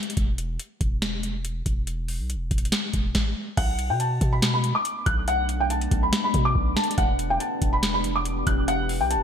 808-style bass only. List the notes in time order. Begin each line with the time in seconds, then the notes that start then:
0.17 E1
0.81 E1
1.66 E1
2.20 B1
2.35 E1
2.51 E1
2.94 E1
3.57 B1
3.90 B2
4.21 B2
5.06 B1
5.91 B1
6.34 B2
6.55 B1
6.98 E1
7.62 E1
8.47 E1
9.01 B1
9.16 E1